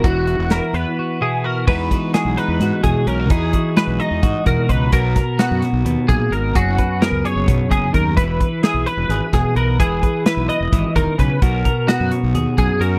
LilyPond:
<<
  \new Staff \with { instrumentName = "Clean electric guitar" } { \time 7/8 \key e \lydian \tempo 4 = 129 fis'4 ais'8 b'4 gis'8 ais'8 | b'4 gis'8 b'4 gis'8 ais'8 | gis'4 b'8 dis''4 ais'8 b'8 | ais'4 fis'8 r4 gis'8 ais'8 |
fis'4 ais'8 cis''4 gis'8 ais'8 | b'4 gis'8 b'4 gis'8 ais'8 | gis'4 b'8 dis''4 ais'8 b'8 | ais'4 fis'8 r4 gis'8 ais'8 | }
  \new Staff \with { instrumentName = "Clean electric guitar" } { \time 7/8 \key e \lydian << { fis'8 fis'8 e'4 fis'8 e'8 fis'8 | <gis b dis' fis'>8 fis'4 dis'8 fis'4 cis'16 dis'16 | dis'8 fis'4 dis'8 fis'4 dis'8 | fis'8 ais'4 fis'2 |
gis'8 b'4 gis'2 | b'8 b'4 b'8 gis'4 b'8 | b'8 b'4 b'2 | fis'8 ais'4 fis'8 gis'4 fis'8 | } \\ { e4. b4 b,4 | e4 gis4. b,4 | e4 gis4. b,4 | b,4 b4 b,8 ais,8 gis,8 |
fis,4 b4 b,8 cis8 dis8 | e4 e'4. b,4 | e4 e'4 e8 dis8 cis8 | b,4 b4. fis,4 | } >> }
  \new Staff \with { instrumentName = "Fingered electric bass" } { \clef bass \time 7/8 \key e \lydian e,,8. e,,8 r16 e,16 r4. r16 | e,8 r8. b,,16 r16 e,16 gis,16 r16 e,16 r16 b,,8 | e,8 r8. b,,16 r16 e,16 gis,16 r16 e,16 r16 cis,8 | b,,8 r8. fis,16 r16 b,,16 dis,16 r16 b,,16 r16 gis,,8 |
fis,,8 r8. cis,16 r16 fis,,16 b,,16 r16 fis,,16 r16 dis,8 | e,,8 r8. b,,16 r16 e,,16 gis,,16 r16 e,,16 r16 b,,8 | e,,8 r8. b,,16 r16 e,,16 gis,,16 r16 e,,16 r16 b,,16 r16 | b,,8 r8. fis,16 r16 b,,16 dis,16 r16 b,,16 r16 fis,8 | }
  \new DrumStaff \with { instrumentName = "Drums" } \drummode { \time 7/8 <hh bd>8 hh8 <hh sn>8 hh8 r4. | <cymc bd>8 <hh bd>8 <hh sn>8 <hh sn>8 <hh sn>8 <hh bd>8 hh8 | <hh bd>8 <hh bd>8 <hh sn>8 hh8 <hh bd>8 <hh bd>8 <hh bd>8 | <hh bd>8 <hh bd sn>8 <hh sn>8 <hh sn>8 hh8 <hh bd>8 hh8 |
<hh bd>8 <hh bd>8 <hh sn>8 hh8 <hh bd>8 <hh bd>8 <hh bd>8 | <hh bd>8 <hh bd>8 <hh sn>8 hh8 hh8 <hh bd sn>8 hh8 | <hh bd>8 <hh bd>8 <hh sn>8 hh8 <hh bd>8 <hh bd>8 <hh bd>8 | <hh bd>8 <hh bd>8 <hh sn>8 hh8 hh8 <hh bd>8 hh8 | }
>>